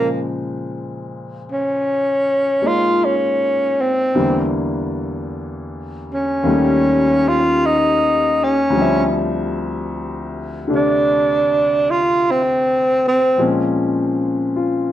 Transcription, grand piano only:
0, 0, Header, 1, 2, 480
1, 0, Start_track
1, 0, Tempo, 1160542
1, 1715, Time_signature, 4, 2, 24, 8
1, 6171, End_track
2, 0, Start_track
2, 0, Title_t, "Grand piano"
2, 0, Program_c, 0, 0
2, 0, Control_c, 0, 64, 127
2, 0, Note_on_c, 0, 46, 40
2, 0, Note_on_c, 0, 49, 43
2, 0, Note_on_c, 0, 53, 35
2, 0, Note_on_c, 0, 56, 37
2, 0, Note_on_c, 0, 72, 34
2, 1077, Note_off_c, 0, 56, 0
2, 1083, Note_on_c, 0, 56, 38
2, 1088, Note_on_c, 0, 58, 32
2, 1091, Note_on_c, 0, 65, 33
2, 1096, Note_on_c, 0, 63, 40
2, 1706, Note_off_c, 0, 46, 0
2, 1711, Note_off_c, 0, 53, 0
2, 1713, Note_off_c, 0, 58, 0
2, 1715, Note_off_c, 0, 56, 0
2, 1715, Note_on_c, 0, 40, 42
2, 1717, Note_on_c, 0, 52, 40
2, 1719, Note_off_c, 0, 65, 0
2, 1719, Note_on_c, 0, 50, 45
2, 1719, Note_on_c, 0, 58, 42
2, 1720, Note_on_c, 0, 55, 41
2, 1721, Control_c, 0, 64, 0
2, 1722, Note_off_c, 0, 63, 0
2, 1723, Note_off_c, 0, 72, 0
2, 1729, Note_off_c, 0, 49, 0
2, 1799, Control_c, 0, 64, 127
2, 2661, Note_on_c, 0, 39, 49
2, 2667, Note_off_c, 0, 55, 0
2, 2667, Note_on_c, 0, 51, 44
2, 2671, Note_off_c, 0, 40, 0
2, 2673, Note_off_c, 0, 52, 0
2, 2673, Note_on_c, 0, 55, 46
2, 2674, Note_off_c, 0, 50, 0
2, 2674, Note_off_c, 0, 58, 0
2, 2676, Control_c, 0, 64, 0
2, 2678, Note_on_c, 0, 57, 46
2, 2681, Note_on_c, 0, 61, 53
2, 2739, Control_c, 0, 64, 127
2, 3598, Note_on_c, 0, 38, 54
2, 3609, Note_on_c, 0, 50, 45
2, 3620, Note_on_c, 0, 53, 47
2, 3621, Note_off_c, 0, 39, 0
2, 3622, Note_off_c, 0, 55, 0
2, 3624, Note_off_c, 0, 51, 0
2, 3628, Note_on_c, 0, 55, 49
2, 3629, Note_off_c, 0, 57, 0
2, 3631, Note_off_c, 0, 61, 0
2, 3631, Control_c, 0, 64, 0
2, 3636, Note_on_c, 0, 60, 47
2, 3646, Note_on_c, 0, 76, 59
2, 3691, Control_c, 0, 64, 127
2, 4409, Note_off_c, 0, 50, 0
2, 4416, Note_on_c, 0, 50, 41
2, 4419, Note_on_c, 0, 48, 38
2, 4421, Note_on_c, 0, 57, 37
2, 4426, Note_on_c, 0, 62, 47
2, 5528, Note_off_c, 0, 53, 0
2, 5529, Note_off_c, 0, 38, 0
2, 5533, Note_off_c, 0, 60, 0
2, 5534, Note_on_c, 0, 46, 44
2, 5534, Note_on_c, 0, 53, 44
2, 5536, Note_on_c, 0, 56, 42
2, 5540, Note_off_c, 0, 50, 0
2, 5540, Note_on_c, 0, 60, 41
2, 5542, Note_off_c, 0, 48, 0
2, 5542, Note_on_c, 0, 61, 51
2, 5543, Note_off_c, 0, 57, 0
2, 5544, Note_off_c, 0, 55, 0
2, 5545, Note_off_c, 0, 62, 0
2, 5549, Control_c, 0, 64, 0
2, 5553, Note_off_c, 0, 76, 0
2, 5616, Control_c, 0, 64, 127
2, 6023, Note_on_c, 0, 65, 43
2, 6171, Note_off_c, 0, 46, 0
2, 6171, Note_off_c, 0, 53, 0
2, 6171, Note_off_c, 0, 56, 0
2, 6171, Note_off_c, 0, 60, 0
2, 6171, Note_off_c, 0, 61, 0
2, 6171, Note_off_c, 0, 65, 0
2, 6171, End_track
0, 0, End_of_file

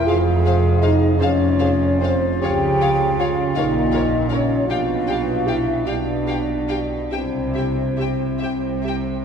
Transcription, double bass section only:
0, 0, Header, 1, 2, 480
1, 0, Start_track
1, 0, Key_signature, -4, "minor"
1, 0, Tempo, 745342
1, 41, Time_signature, 6, 3, 24, 8
1, 522, Tempo, 802139
1, 1482, Tempo, 758534
1, 2922, Tempo, 786370
1, 3882, Tempo, 863309
1, 5542, End_track
2, 0, Start_track
2, 0, Title_t, "Double bass section"
2, 0, Program_c, 0, 48
2, 41, Note_on_c, 0, 29, 74
2, 669, Note_off_c, 0, 29, 0
2, 756, Note_on_c, 0, 29, 69
2, 1399, Note_off_c, 0, 29, 0
2, 1487, Note_on_c, 0, 37, 74
2, 2122, Note_off_c, 0, 37, 0
2, 2206, Note_on_c, 0, 34, 63
2, 2837, Note_off_c, 0, 34, 0
2, 2927, Note_on_c, 0, 35, 62
2, 3552, Note_off_c, 0, 35, 0
2, 3641, Note_on_c, 0, 35, 58
2, 4277, Note_off_c, 0, 35, 0
2, 4365, Note_on_c, 0, 36, 53
2, 5000, Note_off_c, 0, 36, 0
2, 5083, Note_on_c, 0, 36, 48
2, 5542, Note_off_c, 0, 36, 0
2, 5542, End_track
0, 0, End_of_file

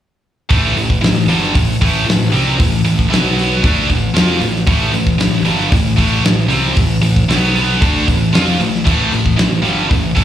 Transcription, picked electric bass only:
0, 0, Header, 1, 2, 480
1, 0, Start_track
1, 0, Key_signature, 0, "minor"
1, 0, Tempo, 522193
1, 458, Time_signature, 4, 2, 24, 8
1, 9414, End_track
2, 0, Start_track
2, 0, Title_t, "Picked electric bass"
2, 0, Program_c, 0, 34
2, 465, Note_on_c, 0, 33, 96
2, 677, Note_off_c, 0, 33, 0
2, 682, Note_on_c, 0, 33, 90
2, 912, Note_off_c, 0, 33, 0
2, 939, Note_on_c, 0, 33, 89
2, 1161, Note_off_c, 0, 33, 0
2, 1173, Note_on_c, 0, 31, 93
2, 1398, Note_off_c, 0, 31, 0
2, 1420, Note_on_c, 0, 33, 86
2, 1642, Note_off_c, 0, 33, 0
2, 1670, Note_on_c, 0, 33, 94
2, 1887, Note_off_c, 0, 33, 0
2, 1906, Note_on_c, 0, 33, 75
2, 2125, Note_off_c, 0, 33, 0
2, 2142, Note_on_c, 0, 36, 88
2, 2362, Note_off_c, 0, 36, 0
2, 2386, Note_on_c, 0, 33, 95
2, 2604, Note_off_c, 0, 33, 0
2, 2638, Note_on_c, 0, 33, 99
2, 2851, Note_off_c, 0, 33, 0
2, 2882, Note_on_c, 0, 35, 104
2, 3316, Note_off_c, 0, 35, 0
2, 3346, Note_on_c, 0, 38, 96
2, 3564, Note_off_c, 0, 38, 0
2, 3587, Note_on_c, 0, 33, 85
2, 3805, Note_off_c, 0, 33, 0
2, 3811, Note_on_c, 0, 41, 93
2, 4036, Note_off_c, 0, 41, 0
2, 4046, Note_on_c, 0, 33, 81
2, 4274, Note_off_c, 0, 33, 0
2, 4289, Note_on_c, 0, 33, 99
2, 4515, Note_off_c, 0, 33, 0
2, 4528, Note_on_c, 0, 33, 94
2, 4755, Note_off_c, 0, 33, 0
2, 4772, Note_on_c, 0, 33, 84
2, 4984, Note_off_c, 0, 33, 0
2, 4990, Note_on_c, 0, 31, 93
2, 5225, Note_off_c, 0, 31, 0
2, 5257, Note_on_c, 0, 33, 83
2, 5480, Note_off_c, 0, 33, 0
2, 5498, Note_on_c, 0, 33, 102
2, 5721, Note_off_c, 0, 33, 0
2, 5729, Note_on_c, 0, 33, 71
2, 5956, Note_off_c, 0, 33, 0
2, 5960, Note_on_c, 0, 36, 97
2, 6191, Note_off_c, 0, 36, 0
2, 6221, Note_on_c, 0, 33, 91
2, 6443, Note_off_c, 0, 33, 0
2, 6452, Note_on_c, 0, 33, 90
2, 6678, Note_off_c, 0, 33, 0
2, 6694, Note_on_c, 0, 35, 103
2, 7142, Note_off_c, 0, 35, 0
2, 7186, Note_on_c, 0, 38, 90
2, 7406, Note_off_c, 0, 38, 0
2, 7425, Note_on_c, 0, 33, 81
2, 7645, Note_off_c, 0, 33, 0
2, 7652, Note_on_c, 0, 41, 96
2, 7878, Note_off_c, 0, 41, 0
2, 7900, Note_on_c, 0, 33, 79
2, 8123, Note_off_c, 0, 33, 0
2, 8146, Note_on_c, 0, 33, 100
2, 8366, Note_off_c, 0, 33, 0
2, 8387, Note_on_c, 0, 33, 94
2, 8607, Note_off_c, 0, 33, 0
2, 8626, Note_on_c, 0, 33, 79
2, 8846, Note_off_c, 0, 33, 0
2, 8857, Note_on_c, 0, 31, 94
2, 9082, Note_off_c, 0, 31, 0
2, 9108, Note_on_c, 0, 33, 78
2, 9327, Note_off_c, 0, 33, 0
2, 9345, Note_on_c, 0, 33, 92
2, 9414, Note_off_c, 0, 33, 0
2, 9414, End_track
0, 0, End_of_file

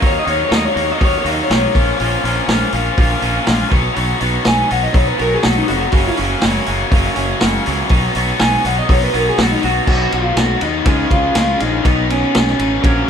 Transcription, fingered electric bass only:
0, 0, Header, 1, 2, 480
1, 0, Start_track
1, 0, Tempo, 492611
1, 19, Time_signature, 4, 2, 24, 8
1, 12764, End_track
2, 0, Start_track
2, 0, Title_t, "Fingered electric bass"
2, 0, Program_c, 0, 33
2, 25, Note_on_c, 0, 39, 96
2, 174, Note_off_c, 0, 39, 0
2, 262, Note_on_c, 0, 39, 84
2, 412, Note_off_c, 0, 39, 0
2, 499, Note_on_c, 0, 39, 86
2, 650, Note_off_c, 0, 39, 0
2, 740, Note_on_c, 0, 39, 88
2, 890, Note_off_c, 0, 39, 0
2, 987, Note_on_c, 0, 39, 92
2, 1136, Note_off_c, 0, 39, 0
2, 1214, Note_on_c, 0, 39, 87
2, 1367, Note_off_c, 0, 39, 0
2, 1461, Note_on_c, 0, 35, 78
2, 1611, Note_off_c, 0, 35, 0
2, 1709, Note_on_c, 0, 34, 90
2, 1857, Note_off_c, 0, 34, 0
2, 1952, Note_on_c, 0, 34, 89
2, 2099, Note_off_c, 0, 34, 0
2, 2180, Note_on_c, 0, 34, 85
2, 2331, Note_off_c, 0, 34, 0
2, 2414, Note_on_c, 0, 34, 86
2, 2566, Note_off_c, 0, 34, 0
2, 2659, Note_on_c, 0, 34, 89
2, 2810, Note_off_c, 0, 34, 0
2, 2908, Note_on_c, 0, 34, 97
2, 3056, Note_off_c, 0, 34, 0
2, 3137, Note_on_c, 0, 34, 89
2, 3289, Note_off_c, 0, 34, 0
2, 3390, Note_on_c, 0, 34, 86
2, 3538, Note_off_c, 0, 34, 0
2, 3624, Note_on_c, 0, 35, 90
2, 3774, Note_off_c, 0, 35, 0
2, 3865, Note_on_c, 0, 35, 88
2, 4014, Note_off_c, 0, 35, 0
2, 4103, Note_on_c, 0, 35, 90
2, 4253, Note_off_c, 0, 35, 0
2, 4346, Note_on_c, 0, 35, 90
2, 4495, Note_off_c, 0, 35, 0
2, 4593, Note_on_c, 0, 35, 88
2, 4740, Note_off_c, 0, 35, 0
2, 4821, Note_on_c, 0, 35, 95
2, 4971, Note_off_c, 0, 35, 0
2, 5064, Note_on_c, 0, 35, 85
2, 5213, Note_off_c, 0, 35, 0
2, 5310, Note_on_c, 0, 35, 95
2, 5457, Note_off_c, 0, 35, 0
2, 5550, Note_on_c, 0, 29, 103
2, 5697, Note_off_c, 0, 29, 0
2, 5777, Note_on_c, 0, 30, 87
2, 5929, Note_off_c, 0, 30, 0
2, 6032, Note_on_c, 0, 30, 97
2, 6178, Note_off_c, 0, 30, 0
2, 6266, Note_on_c, 0, 30, 85
2, 6415, Note_off_c, 0, 30, 0
2, 6505, Note_on_c, 0, 30, 87
2, 6654, Note_off_c, 0, 30, 0
2, 6751, Note_on_c, 0, 30, 97
2, 6898, Note_off_c, 0, 30, 0
2, 6984, Note_on_c, 0, 30, 84
2, 7133, Note_off_c, 0, 30, 0
2, 7231, Note_on_c, 0, 30, 84
2, 7378, Note_off_c, 0, 30, 0
2, 7477, Note_on_c, 0, 37, 101
2, 7622, Note_off_c, 0, 37, 0
2, 7704, Note_on_c, 0, 35, 91
2, 7852, Note_off_c, 0, 35, 0
2, 7947, Note_on_c, 0, 35, 91
2, 8095, Note_off_c, 0, 35, 0
2, 8189, Note_on_c, 0, 35, 88
2, 8336, Note_off_c, 0, 35, 0
2, 8423, Note_on_c, 0, 35, 85
2, 8572, Note_off_c, 0, 35, 0
2, 8675, Note_on_c, 0, 35, 105
2, 8820, Note_off_c, 0, 35, 0
2, 8903, Note_on_c, 0, 35, 88
2, 9052, Note_off_c, 0, 35, 0
2, 9143, Note_on_c, 0, 35, 93
2, 9292, Note_off_c, 0, 35, 0
2, 9391, Note_on_c, 0, 35, 108
2, 9538, Note_off_c, 0, 35, 0
2, 9618, Note_on_c, 0, 35, 86
2, 9801, Note_off_c, 0, 35, 0
2, 9869, Note_on_c, 0, 35, 89
2, 10048, Note_off_c, 0, 35, 0
2, 10091, Note_on_c, 0, 35, 82
2, 10277, Note_off_c, 0, 35, 0
2, 10347, Note_on_c, 0, 39, 79
2, 10527, Note_off_c, 0, 39, 0
2, 10585, Note_on_c, 0, 37, 98
2, 10766, Note_off_c, 0, 37, 0
2, 10831, Note_on_c, 0, 37, 86
2, 11010, Note_off_c, 0, 37, 0
2, 11066, Note_on_c, 0, 37, 82
2, 11247, Note_off_c, 0, 37, 0
2, 11317, Note_on_c, 0, 34, 94
2, 11493, Note_off_c, 0, 34, 0
2, 11551, Note_on_c, 0, 35, 86
2, 11913, Note_off_c, 0, 35, 0
2, 12042, Note_on_c, 0, 35, 90
2, 12217, Note_off_c, 0, 35, 0
2, 12272, Note_on_c, 0, 33, 83
2, 12451, Note_off_c, 0, 33, 0
2, 12512, Note_on_c, 0, 34, 102
2, 12691, Note_off_c, 0, 34, 0
2, 12764, End_track
0, 0, End_of_file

